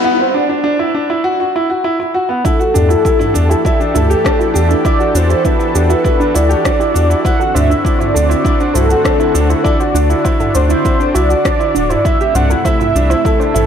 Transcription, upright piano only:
0.05 0.16 B3 loud
0.19 0.31 C4 medium
0.34 0.46 D4 medium
0.49 0.61 D4 medium
0.64 0.76 D4 medium
0.79 0.91 E4 medium
0.95 1.06 D4 medium
1.10 1.22 E4 medium
1.24 1.36 F#4 medium
1.40 1.52 F#4 medium
1.56 1.67 E4 medium
1.70 1.82 F#4 medium
1.84 1.96 E4 medium
2.00 2.11 E4 medium
2.14 2.26 F#4 medium
2.29 2.41 B3 medium
2.45 2.56 E4 medium
2.59 2.71 F#4 medium
2.74 2.86 D4 medium
2.89 3.01 E4 medium
3.05 3.17 E4 medium
3.19 3.31 E4 medium
3.34 3.46 D4 medium
3.49 3.61 E4 medium
3.65 3.77 E4 medium
3.80 3.92 D4 medium
3.95 4.07 E4 medium
4.10 4.22 G4 medium
4.24 4.36 D4 medium
4.39 4.51 E4 medium
4.54 4.66 D4 medium
4.69 4.81 E4 medium
4.85 4.97 E4 medium
4.99 5.11 F#4 medium
5.15 5.27 D4 medium
5.30 5.42 E4 medium
5.45 5.57 E4 medium
5.59 5.71 E4 medium
5.75 5.87 D4 medium
5.90 6.02 E4 medium
6.04 6.16 E4 medium
6.20 6.32 D4 medium
6.34 6.46 E4 medium
6.50 6.61 G4 medium
6.65 6.77 D4 medium
6.80 6.92 E4 medium
6.94 7.06 D4 medium
7.10 7.22 E4 medium
7.25 7.37 E4 loud
7.40 7.52 F#4 medium
7.55 7.67 D4 medium
7.70 7.82 E4 medium
7.85 7.97 E4 medium
8.00 8.12 E4 medium
8.15 8.27 D4 medium
8.30 8.41 E4 medium
8.45 8.57 E4 medium
8.60 8.72 D4 medium
8.76 8.87 E4 medium
8.91 9.02 F#4 medium
9.05 9.17 D4 medium
9.20 9.32 E4 medium
9.35 9.47 D4 medium
9.49 9.61 E4 medium
9.64 9.76 E4 loud
9.80 9.92 F#4 medium
9.94 10.06 D4 medium
10.10 10.22 E4 medium
10.25 10.36 E4 medium
10.40 10.52 E4 medium
10.55 10.67 D4 medium
10.71 10.82 E4 medium
10.85 10.97 E4 medium
11.00 11.12 D4 medium
11.15 11.27 E4 medium
11.30 11.42 F#4 medium
11.45 11.57 D4 medium
11.59 11.71 E4 medium
11.75 11.87 D4 medium
11.90 12.02 E4 medium
12.05 12.17 E4 medium
12.21 12.32 G4 medium
12.36 12.47 D4 medium
12.51 12.62 E4 medium
12.65 12.77 E4 medium
12.80 12.91 E4 medium
12.96 13.07 D4 medium
13.10 13.22 E4 medium
13.25 13.37 E4 medium
13.40 13.52 D4 medium
13.54 13.66 E4 medium

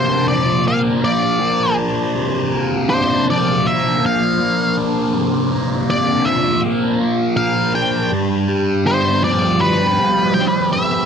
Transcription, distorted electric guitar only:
0.00 1.03 C3 medium
0.00 0.66 A#3 medium
0.00 1.78 D4 medium
0.30 1.03 F3 medium
0.66 1.40 A#3 medium
1.03 3.27 F3 medium
1.40 2.52 A#3 medium
1.78 2.89 D4 medium
2.15 4.02 C3 medium
2.52 3.63 A#3 medium
2.90 4.77 D4 medium
3.28 4.01 F3 medium
3.64 4.38 A#3 medium
4.02 6.26 F3 medium
4.39 5.50 A#3 medium
4.77 5.89 D4 medium
5.14 7.00 C3 medium
5.51 6.61 A#3 medium
5.89 7.74 D4 medium
6.26 6.99 F3 medium
6.63 7.36 A#3 medium
7.00 8.12 F3 medium
7.37 8.12 A#3 medium
7.74 8.85 D4 medium
8.11 9.98 G2 medium
8.48 9.59 G3 medium
8.85 10.72 B3 medium
9.22 9.96 F3 medium
9.60 10.34 G3 medium
9.98 11.05 F3 medium
10.35 11.05 G3 medium
10.74 11.05 B3 medium

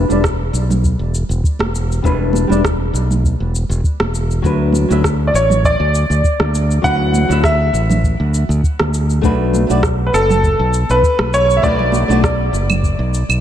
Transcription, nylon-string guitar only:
0.08 0.20 G3 medium
0.08 0.21 D4 medium
0.08 0.22 E4 medium
0.08 0.22 D5 medium
2.02 2.45 G3 medium
2.02 2.46 D4 medium
2.02 2.47 E4 medium
2.02 2.47 B4 medium
2.47 2.60 G3 medium
2.47 2.61 D4 medium
2.47 2.61 E4 medium
2.51 2.62 D5 medium
4.42 4.85 F#3 medium
4.42 4.86 D4 medium
4.42 4.87 E4 medium
4.42 4.87 B4 medium
4.88 5.00 F#3 medium
4.88 5.01 D4 medium
4.88 5.02 E4 medium
4.88 5.02 E5 medium
6.82 7.25 F#3 medium
6.82 7.26 D4 medium
6.82 7.26 E4 medium
6.82 7.27 B4 medium
7.28 7.40 F#3 medium
7.28 7.41 D4 medium
7.28 7.42 E4 medium
7.28 7.42 E5 medium
9.21 9.65 A3 medium
9.21 9.66 D4 medium
9.21 9.66 F#4 medium
9.21 9.67 B4 medium
9.67 9.80 A3 medium
9.67 9.80 D4 medium
9.67 9.81 F#4 medium
9.67 9.82 D5 medium
11.62 12.05 A3 medium
11.62 12.06 D4 medium
11.62 12.06 F#4 medium
11.62 12.07 B4 medium
12.08 12.20 A3 medium
12.08 12.21 D4 medium
12.08 12.21 F#4 medium
12.12 12.22 D5 medium

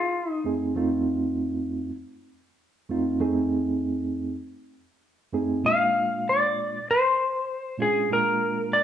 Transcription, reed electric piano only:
0.44 0.73 F2 medium
0.44 0.73 A3 medium
0.44 0.74 C4 medium
0.44 0.74 D#4 medium
0.44 0.74 G#4 medium
0.75 1.90 F2 medium
0.75 1.90 A3 medium
0.75 1.90 C4 medium
0.75 1.91 D#4 medium
0.75 1.91 F4 loud
2.90 3.18 F2 medium
2.90 3.18 A3 medium
2.90 3.19 C4 medium
2.90 3.19 D#4 medium
2.90 3.19 F4 loud
3.20 4.34 F2 medium
3.20 4.35 A3 medium
3.20 4.35 C4 medium
3.20 4.35 D#4 medium
3.20 4.35 G#4 loud
5.33 5.62 F2 medium
5.33 5.63 A3 medium
5.33 5.63 C4 medium
5.33 5.63 D#4 medium
5.33 5.63 G#4 loud
5.63 6.79 A#2 medium
5.63 6.79 G#3 medium
5.63 6.79 A#3 medium
5.63 6.79 D4 medium
5.63 6.79 F4 medium
7.77 8.07 A#2 medium
7.77 8.08 G#3 medium
7.77 8.08 C#4 medium
7.77 8.08 D4 medium
7.77 8.08 F4 medium
8.10 8.84 A#2 medium
8.10 8.84 G#3 medium
8.10 8.84 A#3 medium
8.10 8.84 D4 medium
8.10 8.84 F4 medium

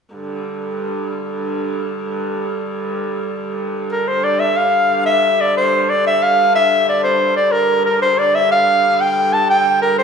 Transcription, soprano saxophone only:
3.92 4.09 A#4 medium
4.08 4.25 C5 medium
4.24 4.41 D5 medium
4.40 4.58 E5 medium
4.57 5.05 F5 medium
5.06 5.42 E5 medium
5.41 5.56 D5 medium
5.57 5.91 C5 medium
5.90 6.06 D5 medium
6.07 6.24 E5 medium
6.23 6.55 F5 medium
6.55 6.85 E5 medium
6.89 7.03 D5 medium
7.04 7.34 C5 medium
7.37 7.53 D5 medium
7.52 7.85 A#4 medium
7.86 8.01 A#4 medium
8.02 8.20 C5 medium
8.19 8.36 D5 medium
8.35 8.51 E5 medium
8.52 9.02 F5 medium
9.01 9.35 G5 medium
9.33 9.49 A5 medium
9.50 9.80 G5 medium
9.82 9.97 A#4 medium
9.99 10.03 C5 medium

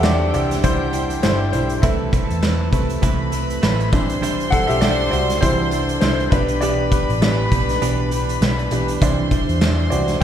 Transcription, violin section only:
0.00 1.79 G4 medium
0.00 1.79 G5 medium
1.82 3.00 A4 medium
1.82 3.00 A5 medium
3.01 3.90 B4 medium
3.01 3.90 B5 medium
3.92 6.27 C5 medium
3.92 6.28 C6 loud
6.31 8.97 B4 medium
6.31 8.97 B5 medium
9.01 10.23 C5 medium
9.01 10.23 C6 medium

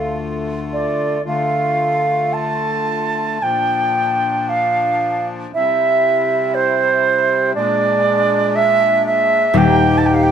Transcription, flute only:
0.00 0.16 F5 medium
0.73 1.22 D5 medium
1.27 2.35 F5 medium
2.33 3.44 A5 medium
3.43 4.51 G5 loud
4.49 5.27 F5 medium
5.54 6.56 E5 medium
6.54 7.54 C5 medium
7.55 8.57 D5 loud
8.56 9.05 E5 loud
9.06 9.59 E5 loud
9.58 9.99 G5 loud
9.98 10.08 A5 medium
10.06 10.16 G5 medium
10.14 10.25 F5 medium
10.23 10.31 G5 medium

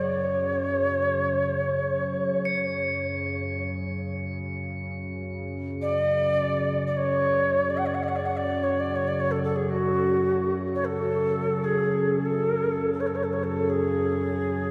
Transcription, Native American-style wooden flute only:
0.00 3.05 C#5 medium
5.81 6.83 D5 medium
6.87 6.98 D5 medium
6.97 7.71 C#5 medium
7.69 7.78 D5 medium
7.77 7.87 F#5 medium
7.85 7.95 D5 medium
7.94 8.04 F#5 medium
8.03 8.09 D5 medium
8.08 8.17 F#5 medium
8.15 8.27 D5 medium
8.25 8.38 F#5 medium
8.36 8.64 D5 medium
8.63 8.81 C#5 medium
8.79 8.96 D5 medium
8.95 9.09 C#5 medium
9.07 9.21 D5 medium
9.20 9.32 C#5 medium
9.31 9.39 A4 medium
9.43 9.57 A4 medium
9.55 9.71 G#4 medium
9.69 10.54 F#4 medium
10.74 10.86 C#5 medium
10.84 11.65 A4 medium
11.63 12.27 G#4 medium
12.25 12.92 A4 medium
12.93 13.01 A4 medium
13.00 13.08 C#5 medium
13.06 13.16 A4 medium
13.15 13.25 C#5 medium
13.23 13.34 A4 medium
13.33 13.45 C#5 medium
13.43 13.70 A4 medium
13.69 14.71 G#4 medium

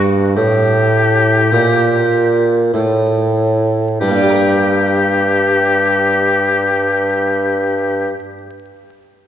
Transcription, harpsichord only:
0.00 0.33 G2 soft
0.00 0.31 A#3 soft
0.00 0.32 D4 soft
0.37 1.48 A2 soft
1.52 2.70 A#2 soft
2.74 3.97 A2 medium
4.01 8.10 G3 soft
4.08 8.17 A#3 medium
4.15 8.24 D4 soft
4.22 8.31 G4 soft
4.29 8.38 A#4 soft

